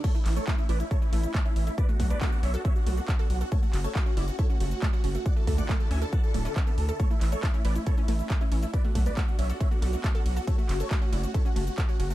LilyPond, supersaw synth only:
\new Staff \with { instrumentName = "Supersaw synth" } { \time 4/4 \key a \major \tempo 4 = 138 <a' cis''>16 e'16 e'16 <a' cis''>16 e'16 e'16 <b' d''>16 e'16 <a' cis''>16 e'16 e'16 e'16 r16 e'16 e'16 e'16 | <b' d''>16 fis'16 fis'16 <b' d''>16 fis'16 fis'16 <cis'' e''>16 fis'16 <cis'' e''>16 fis'16 fis'16 fis'16 r16 fis'16 fis'16 fis'16 | <a' cis''>16 fis'16 fis'16 <a' cis''>16 fis'16 fis'16 <fis' d''>16 fis'16 <a' cis''>16 fis'16 fis'16 fis'16 r16 fis'16 fis'16 fis'16 | <d'' fis''>16 a'16 a'16 <d'' fis''>16 a'16 a'16 <e'' gis''>16 a'16 <fis'' a''>16 a'16 a'16 a'16 r16 a'16 a'16 a'16 |
<a' cis''>16 e'16 e'16 <a' cis''>16 e'16 e'16 <b' d''>16 e'16 <a' cis''>16 e'16 e'16 e'16 r16 e'16 e'16 e'16 | <b' d''>16 fis'16 fis'16 <b' d''>16 fis'16 fis'16 <cis'' e''>16 fis'16 <cis'' e''>16 fis'16 fis'16 fis'16 r16 fis'16 fis'16 fis'16 | <a' cis''>16 fis'16 fis'16 <a' cis''>16 fis'16 fis'16 <fis' d''>16 fis'16 <a' cis''>16 fis'16 fis'16 fis'16 r16 fis'16 fis'16 fis'16 | }